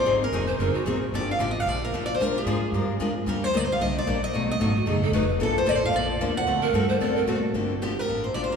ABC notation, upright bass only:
X:1
M:4/4
L:1/8
Q:"Swing" 1/4=224
K:Gm
V:1 name="Upright bass" clef=bass
_A,,,2 F,,,2 _G,,, z B,,,2 | G,,,2 A,,,2 B,,,2 F,,2 | B,,2 _A,,2 G,,2 F,,2 | E,,2 D,,2 C,,2 B,,,2 |
=B,,,2 _A,,,2 ^F,,,2 ^E,,,2 | B,,,2 A,,,2 B,,,2 E,,2 | D,, z G,,2 ^F,,2 B,,2 | G,,,4 A,,,2 B,,,2 |]